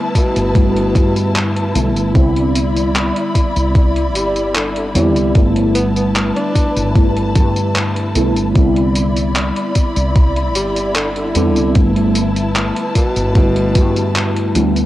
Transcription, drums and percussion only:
0.15 kick, closed hi-hat, tambourine
0.36 closed hi-hat, tambourine
0.55 kick, closed hi-hat, tambourine
0.76 closed hi-hat
0.95 kick, closed hi-hat, tambourine
1.16 closed hi-hat, tambourine
1.35 clap, closed hi-hat, tambourine
1.56 closed hi-hat
1.75 closed hi-hat, tambourine
1.96 closed hi-hat, tambourine
2.15 kick, closed hi-hat, tambourine
2.36 closed hi-hat
2.55 closed hi-hat, tambourine
2.76 closed hi-hat, tambourine
2.95 clap, closed hi-hat, tambourine
3.16 closed hi-hat
3.35 kick, closed hi-hat, tambourine
3.56 closed hi-hat, tambourine
3.75 kick, closed hi-hat, tambourine
3.96 closed hi-hat
4.15 closed hi-hat, tambourine
4.36 closed hi-hat, tambourine
4.55 clap, closed hi-hat, tambourine
4.76 closed hi-hat
4.95 closed hi-hat, tambourine
5.16 closed hi-hat, tambourine
5.35 kick, closed hi-hat, tambourine
5.56 closed hi-hat
5.75 closed hi-hat, tambourine
5.96 closed hi-hat, tambourine
6.16 clap, closed hi-hat, tambourine
6.36 closed hi-hat
6.55 kick, closed hi-hat, tambourine
6.77 closed hi-hat, tambourine
6.96 kick, closed hi-hat, tambourine
7.17 closed hi-hat
7.35 kick, closed hi-hat, tambourine
7.56 closed hi-hat, tambourine
7.75 clap, closed hi-hat, tambourine
7.96 closed hi-hat
8.15 closed hi-hat, tambourine
8.36 closed hi-hat, tambourine
8.55 kick, closed hi-hat, tambourine
8.76 closed hi-hat
8.95 closed hi-hat, tambourine
9.17 closed hi-hat, tambourine
9.35 clap, closed hi-hat, tambourine
9.56 closed hi-hat
9.75 kick, closed hi-hat, tambourine
9.96 closed hi-hat, tambourine
10.16 kick, closed hi-hat, tambourine
10.36 closed hi-hat
10.55 closed hi-hat, tambourine
10.76 closed hi-hat, tambourine
10.95 clap, closed hi-hat, tambourine
11.16 closed hi-hat
11.35 closed hi-hat, tambourine
11.56 closed hi-hat, tambourine
11.75 kick, closed hi-hat, tambourine
11.96 closed hi-hat
12.15 closed hi-hat, tambourine
12.36 closed hi-hat, tambourine
12.55 clap, closed hi-hat, tambourine
12.76 closed hi-hat
12.95 kick, closed hi-hat, tambourine
13.16 closed hi-hat, tambourine
13.35 kick, closed hi-hat, tambourine
13.56 closed hi-hat
13.75 kick, closed hi-hat, tambourine
13.96 closed hi-hat, tambourine
14.16 clap, closed hi-hat, tambourine
14.36 closed hi-hat
14.55 closed hi-hat, tambourine
14.76 closed hi-hat, tambourine

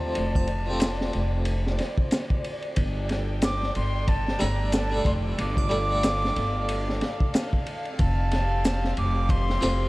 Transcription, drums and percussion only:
0.15 ride
0.35 kick, triangle
0.47 ride
0.80 snare, ride, maracas
1.01 snare
1.13 ride
1.45 ride
1.67 snare
1.79 snare, ride
1.98 kick
2.11 snare, ride, maracas
2.30 kick
2.44 ride
2.62 ride
2.76 kick, ride
3.09 snare, ride
3.42 snare, ride, maracas
3.63 snare
3.75 ride
4.08 kick, ride
4.28 snare
4.40 snare, ride, triangle
4.72 snare, ride, maracas
5.05 kick, ride
5.38 ride
5.57 kick, triangle
5.71 ride
6.03 snare, ride, maracas
6.25 snare
6.36 ride
6.69 ride
6.89 snare
7.01 snare, ride
7.20 kick
7.34 snare, ride, maracas
7.53 kick
7.66 ride
7.85 ride
7.99 kick, ride
8.31 snare, ride
8.65 snare, ride, maracas
8.85 snare
8.97 ride
9.29 kick, ride
9.50 snare
9.62 snare, ride, triangle

